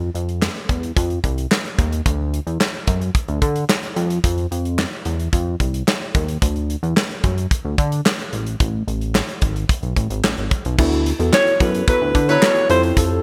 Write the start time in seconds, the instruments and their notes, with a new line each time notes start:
Already playing: analog synth bass F2
0.15 analog synth bass F2, closed hi-hat
0.29 closed hi-hat
0.42 snare, clap
0.69 analog synth bass E2, kick, closed hi-hat
0.83 closed hi-hat
0.96 analog synth bass F2, kick, closed hi-hat
1.10 closed hi-hat
1.24 analog synth bass C2, kick, closed hi-hat
1.38 closed hi-hat
1.51 snare, clap
1.65 closed hi-hat
1.78 analog synth bass D#2, kick, closed hi-hat
1.92 closed hi-hat
2.06 analog synth bass D2, kick, closed hi-hat
2.34 closed hi-hat
2.47 analog synth bass E2, closed hi-hat
2.61 snare, clap
2.87 analog synth bass F#2, kick, closed hi-hat
3.01 closed hi-hat
3.15 kick, closed hi-hat
3.28 analog synth bass D2, closed hi-hat
3.42 analog synth bass D3, kick, closed hi-hat
3.56 closed hi-hat
3.69 snare, clap
3.83 closed hi-hat
3.96 analog synth bass F2, closed hi-hat
4.10 closed hi-hat
4.24 analog synth bass F2, kick, closed hi-hat
4.38 closed hi-hat
4.51 analog synth bass F2, closed hi-hat
4.65 closed hi-hat
4.79 snare, clap
5.05 analog synth bass E2, closed hi-hat
5.20 closed hi-hat
5.33 analog synth bass F2, kick, closed hi-hat
5.60 analog synth bass C2, kick, closed hi-hat
5.74 closed hi-hat
5.88 snare, clap
6.15 analog synth bass D#2, kick, closed hi-hat
6.28 closed hi-hat
6.42 analog synth bass D2, kick, closed hi-hat
6.56 closed hi-hat
6.70 closed hi-hat
6.83 analog synth bass E2, closed hi-hat
6.97 snare, clap
7.11 closed hi-hat
7.24 analog synth bass F#2, kick, closed hi-hat
7.38 closed hi-hat
7.51 kick, closed hi-hat
7.65 analog synth bass D2
7.78 analog synth bass D3, kick, closed hi-hat
7.92 closed hi-hat
8.06 snare, clap
8.19 closed hi-hat
8.33 analog synth bass A1, closed hi-hat
8.46 closed hi-hat
8.60 analog synth bass A1, kick, closed hi-hat
8.88 analog synth bass A1, closed hi-hat
9.01 closed hi-hat
9.15 snare, clap
9.29 closed hi-hat
9.42 analog synth bass G#1, kick, closed hi-hat
9.56 closed hi-hat
9.69 kick, closed hi-hat
9.83 analog synth bass B1, closed hi-hat
9.96 analog synth bass A1, kick, closed hi-hat
10.10 analog synth bass G#1, closed hi-hat
10.24 analog synth bass A1, snare, clap
10.37 analog synth bass G#1, closed hi-hat
10.51 kick, closed hi-hat
10.65 analog synth bass B1, closed hi-hat
10.78 analog synth bass D2, tine electric piano B3 E4 F#4 A4, kick, crash
10.92 closed hi-hat
11.06 closed hi-hat
11.19 analog synth bass E2, tine electric piano B3 E4 F#4 A4, closed hi-hat
11.33 alto saxophone C#5, snare, clap
11.47 closed hi-hat
11.60 analog synth bass F#2, tine electric piano B3 E4 F#4 A4, alto saxophone B4, kick, closed hi-hat
11.75 closed hi-hat
11.88 horn section F#3 E4 B4, tine electric piano B3 E4 F#4 A4, alto saxophone B4, kick, closed hi-hat
12.01 analog synth bass D2
12.15 analog synth bass D3, kick, closed hi-hat
12.29 horn section F#3 E4 B4, tine electric piano B3 E4 F#4 A4, alto saxophone C#5, closed hi-hat
12.42 snare, clap
12.56 closed hi-hat
12.69 analog synth bass F2, tine electric piano C4 E4 G4 A4, alto saxophone C5, closed hi-hat
12.83 closed hi-hat
12.97 analog synth bass F2, alto saxophone A4, kick, closed hi-hat